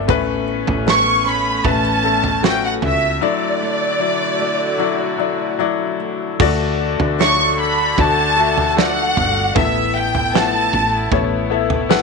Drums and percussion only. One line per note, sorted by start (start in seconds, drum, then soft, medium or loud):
0.09 kick loud
0.09 floor tom loud
0.67 floor tom medium
0.88 snare loud
1.65 kick medium
1.65 floor tom medium
2.24 floor tom medium
2.44 snare loud
2.82 floor tom medium
6.40 kick loud
6.40 floor tom loud
6.40 crash loud
7.00 floor tom medium
7.21 snare loud
7.98 kick loud
7.98 floor tom medium
8.57 floor tom medium
8.78 snare loud
9.17 floor tom medium
9.56 kick loud
9.56 floor tom loud
10.15 floor tom medium
10.35 snare loud
11.12 kick loud
11.12 floor tom medium
11.70 floor tom medium
11.91 snare loud